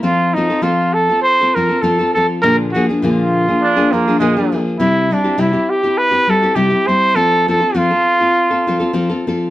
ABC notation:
X:1
M:4/4
L:1/16
Q:"Swing" 1/4=101
K:Fphr
V:1 name="Trumpet"
F2 E2 F2 =A2 c2 B2 A2 A2 | B2 G2 F8- F2 z2 | =E2 =D2 E2 =G2 _c2 =A2 G2 =c2 | =A2 A2 F8- F2 z2 |]
V:2 name="Nylon-string guitar"
[F,CF=A]2 [F,CFA] [CFA] [F,CFA]3 [CFA]2 [CFA] [F,CFA] [CFA] [F,CFA] [CFA] [F,CFA]2 | [B,,=D,F,B,=DA]2 [F,B,DA] [F,B,DA] [B,,D,F,B,DA]3 [F,B,DA]2 [F,B,DA] [F,B,DA] [F,B,DA] [B,,D,F,B,DA] [F,B,DA] [F,B,DA]2 | [C,=G,C=E=G]2 [G,CEG] [CEG] [C,G,CEG] [CEG]2 [CEG]2 [CEG] [G,CEG] [CEG] [C,G,CEG] [CEG] [G,CEG]2 | [F,CF=A]2 [F,CFA] [CFA] [F,CFA] [CFA]2 [CFA]2 [CFA] [F,CFA] [CFA] [F,CFA] [CFA] [F,CFA]2 |]
V:3 name="Trumpet"
z16 | z8 =D2 B,2 A,3 z | z16 | z16 |]